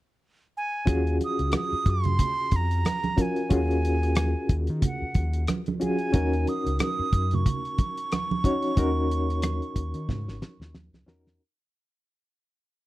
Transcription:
0.57 G#5
0.86 D#2 C#4 F4 F#4 G#4, kick, closed hi-hat, muted conga
1.07 closed hi-hat
1.21 D#6, closed hi-hat, muted conga
1.39 C#2, closed hi-hat
1.52 cross-stick, closed hi-hat, high conga
1.56 D#6
1.73 muted fingered electric bass stroke
1.86 F#2, kick, closed hi-hat
1.90 C6
2.04 closed hi-hat, low conga
2.19 kick, closed hi-hat, low conga
2.51 F2, kick, closed hi-hat, muted conga
2.56 A#5
2.71 closed hi-hat
2.85 cross-stick, closed hi-hat, high conga
3.03 closed hi-hat, high conga
3.17 C#4 F4 F#4 A#4, kick, closed hi-hat, high conga
3.22 G#5
3.36 closed hi-hat
3.50 D#2 C#4 F4 F#4 G#4, kick, closed hi-hat, muted conga
3.55 G#5
3.71 closed hi-hat
3.85 closed hi-hat
4.03 cross-stick, closed hi-hat
4.15 cross-stick, closed hi-hat, high conga
4.49 D#2, kick, closed hi-hat
4.67 D#3, closed hi-hat
4.82 F#5, kick, closed hi-hat, low conga
5.02 muted fingered electric bass stroke
5.14 D#2, kick, closed hi-hat, muted conga
5.33 closed hi-hat
5.47 cross-stick, closed hi-hat, high conga
5.66 closed hi-hat, high conga
5.80 C#4 F4 F#4 G#4, closed hi-hat, high conga
5.84 G#5
5.99 closed hi-hat
6.12 D#2 C#4 D#4 F#4 A#4, kick, closed hi-hat, muted conga
6.33 closed hi-hat
6.47 D#6, closed hi-hat, muted conga
6.66 C#2, closed hi-hat
6.79 D#6, cross-stick, closed hi-hat, high conga
6.99 muted fingered electric bass stroke
7.13 F#2, kick, closed hi-hat
7.31 C#6, closed hi-hat, low conga
7.46 kick, closed hi-hat, low conga
7.65 closed hi-hat
7.78 kick, closed hi-hat, muted conga
7.97 closed hi-hat
8.12 cross-stick, closed hi-hat, high conga
8.31 high conga
8.44 C#4 D#4 F#4 C#5, kick, closed hi-hat, high conga
8.62 closed hi-hat
8.76 D#2 C#4 D#4 F#4 A#4, kick, closed hi-hat, muted conga
9.11 closed hi-hat
9.30 cross-stick, closed hi-hat
9.42 cross-stick, closed hi-hat, high conga
9.62 closed hi-hat
9.76 D#2, kick, closed hi-hat
9.94 D#3, closed hi-hat
10.09 G#2, kick, snare, low conga
10.27 G#1, snare
10.42 snare, muted conga
10.60 D#2, snare
10.75 snare, high conga
10.93 C#2, snare, high conga
11.06 E2 C#4 D#4 F#4 A#4, snare
11.27 snare

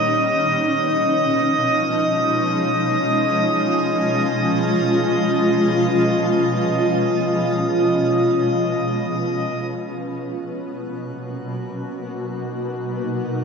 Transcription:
Already playing: A#2 D#3 C#4 D#4 D#5 D#6
0.10 B2
0.66 F3
1.33 G#3
3.19 F4
9.72 F#4 F#6
10.46 A#3
10.59 F#3
11.04 F#4
12.00 D#4

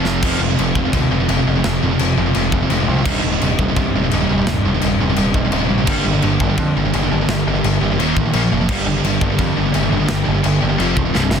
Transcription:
Already playing: F1 F2 C3 F3
0.05 snare
0.22 F1 F2 C3 F3 G#3 C4 F4, kick, crash, china
0.40 F1 F2 C3
0.50 F2 C3
0.58 F1 F2 C3, china
0.75 F1 F2 C3 F3 G#3 C4 F4, kick
0.79 C3
0.87 F2 C3
0.93 D#2 F2 C3, kick, china
1.11 F1 F2 C3
1.20 F2 C3
1.28 F1 F2 C3 F3 G#3 C4 F4, china
1.38 F2 C3
1.47 F1 F2 C3
1.56 F2 C3
1.64 F1 F2 C3 F3 G#3 C4 F4, snare, china
1.82 F1 F2 C3
1.93 F2 C3
1.99 F1 F2 C3, china
2.17 F1 F2 C3 F3 G#3 C4 F4
2.27 F2 C3
2.35 F1 F2 C3, china
2.52 F1 F2 C3, kick
2.62 F2 C3
2.69 F1 F2 C3 F3 G#3 C4 F4, china
2.80 F2 C3
2.88 C2 F2 C3
2.97 F2 C3
3.04 C2 G2 C3 G3 D#4, kick, crash, china
3.23 D#1 C2 G2
3.32 C2 G2
3.41 D#1 C2 G2, china
3.58 D#1 C2 G2 C3 G3 D#4, kick
3.70 C2 G2
3.76 C2 G2, kick, china
3.95 D#1 C2 G2
4.04 C2 G2
4.11 D#1 C2 G2 C3 G3 D#4, china
4.24 C2 G2
4.30 D#1 C2 G2
4.38 C2 G2
4.43 C2 G2
4.47 D#1 C2 G2 C3 G3 D#4, snare, china
4.64 D#1 G2
4.69 C2
4.76 C2 G2
4.82 D#1, china
4.86 C2 G2
4.99 D#1 C2 G2 C3 G3 D#4
5.10 C2 G2
5.16 D#1 C2 G2, china
5.34 D#1 C2 G2, kick
5.45 C2 G2
5.52 D#1 C2 G2 C3 G3 D#4, china
5.61 C2 G2
5.68 A#1 C2 G2
5.79 C2 G2
5.87 G1 G2 D3 G3 A#3 D4 G4, kick, crash, china
6.05 G1 G2 D3
6.13 G2 D3
6.22 G1 G2 D3, china
6.40 G1 G2 D3 G3 A#3 D4 G4, kick
6.49 G2 D3
6.58 F2 G2 D3, kick, china
6.76 G1 G2 D3
6.86 G2 D3
6.93 G1 G2 D3 G3 A#3 D4 G4, china
7.03 G2 D3
7.11 G1 G2 D3
7.21 G2 D3
7.28 G1 G2 D3 G3 A#3 D4 G4, snare, china
7.46 G1 G2 D3
7.55 G2 D3
7.64 G1 G2 D3, china
7.81 G1 G2 D3 G3 A#3 D4 G4
7.90 G2 D3
7.98 D#1 D#2 A#2 D#3, china
8.16 A1 D#2 A#2, kick
8.26 D#2 A#2
8.33 A#1 A#2 F3 A#3, china
8.43 A#2 F3
8.52 F1 A#2 F3
8.61 A#2 F3
8.69 G1 G2 D3 G3 A#3 D4 G4, kick, crash, china
8.86 G1 G2 D3
8.96 G2 D3
9.03 G1 G2 D3, china
9.21 G1 G2 D3 G3 A#3 D4 G4, kick
9.30 G2 D3
9.38 F2 G2 D3, kick, china
9.56 G1 G2 D3
9.64 G2 D3
9.72 G1 G2 D3 G3 A#3 D4 G4, china
9.80 G2 D3
9.89 G1 G2 D3
9.97 G2 D3
10.06 G1 G2 D3 G3, snare, china
10.10 A#3 D4 G4
10.24 G1 G2 D3
10.32 G2 D3
10.43 G1 G2 D3, china
10.61 G1 G2 D3 G3 A#3 D4 G4
10.69 G2 D3
10.78 F1 F2 C3 F3, china
10.96 D1 F2 C3, kick
11.04 F2 C3
11.13 C1 C2 G2 C3, snare
11.22 C2 G2
11.30 G1 C2 G2, snare

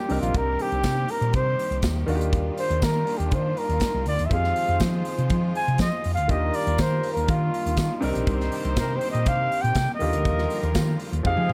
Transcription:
Already playing: D#3 G3 A#3 D4 F4 G4
0.09 C2 C3 C4 D4 D#4 G4 A#4, open hi-hat
0.21 A#1 F4, closed hi-hat
0.34 C2 A#4, kick, closed hi-hat
0.59 G4, open hi-hat
0.72 C2, closed hi-hat
0.83 C3, kick, snare, closed hi-hat, tambourine
1.08 A#4, open hi-hat
1.21 A#2, closed hi-hat
1.33 C3 C5, kick, closed hi-hat
1.59 open hi-hat
1.71 C2, closed hi-hat
1.82 D#2, kick, snare, closed hi-hat, tambourine
2.06 D#2 D#3 A#3 D4 F4 F#4, open hi-hat
2.15 G4
2.21 closed hi-hat
2.33 kick, closed hi-hat
2.58 C5, open hi-hat
2.70 D#2, closed hi-hat
2.82 D#3 A#4, kick, snare, closed hi-hat, tambourine
3.07 open hi-hat
3.17 D#2 G4, closed hi-hat
3.31 D#3 C5, kick, closed hi-hat
3.57 A#4, open hi-hat
3.69 D#2, closed hi-hat
3.80 kick, snare, closed hi-hat, tambourine
3.94 C2
4.06 D2 D5, open hi-hat
4.19 D#2, closed hi-hat
4.26 F3 E5
4.30 F2 F3 G#3 C4 D#4 F4 G4 G#4 C5 F5, kick, closed hi-hat
4.44 snare
4.56 open hi-hat
4.69 F2, closed hi-hat
4.80 F3, kick, snare, closed hi-hat, tambourine
5.05 open hi-hat
5.18 C3, closed hi-hat
5.30 F3, kick, closed hi-hat
5.55 G#5, open hi-hat
5.68 C3, closed hi-hat
5.78 F3 D#5, kick, snare, closed hi-hat, tambourine
6.04 F2, open hi-hat
6.14 D2 F5, closed hi-hat
6.28 D#2 D#3 G3 A#3 D4 F4 G4 A#4 D#5, kick, closed hi-hat
6.54 D5, open hi-hat
6.67 D#2, closed hi-hat
6.78 D#3 C5, kick, snare, closed hi-hat, tambourine
7.03 open hi-hat
7.13 D#2 A#4, closed hi-hat
7.28 D#3 F4, kick, closed hi-hat
7.54 open hi-hat
7.66 D#2, closed hi-hat
7.77 D#3, kick, snare, closed hi-hat, tambourine
8.01 C2 C3 C4 D4 D#4 G4 A#4 C5, open hi-hat
8.15 A#1, closed hi-hat
8.27 C2, kick, closed hi-hat
8.40 snare
8.52 open hi-hat
8.65 C2, closed hi-hat
8.76 C3 A#4, kick, snare, closed hi-hat, tambourine
8.96 C5
9.01 open hi-hat
9.11 A#2 D#5, closed hi-hat
9.26 C3 F5, kick, closed hi-hat
9.52 open hi-hat
9.61 A#2 G5, closed hi-hat
9.75 C3, kick, snare, closed hi-hat, tambourine
9.94 D#5
9.99 D#2 D3 D#3 F3 G3 A#3 F4 G4 A#4, open hi-hat
10.13 D2, closed hi-hat
10.25 D#2, kick, closed hi-hat
10.38 snare
10.50 open hi-hat
10.63 D#2, closed hi-hat
10.75 D#3, kick, snare, closed hi-hat, tambourine
10.99 open hi-hat
11.12 D#2, closed hi-hat
11.23 F2 F3 G#3 C4 D#4 G4 G#4 F5 G5, kick, high tom
11.37 F3, high tom
11.49 mid tom

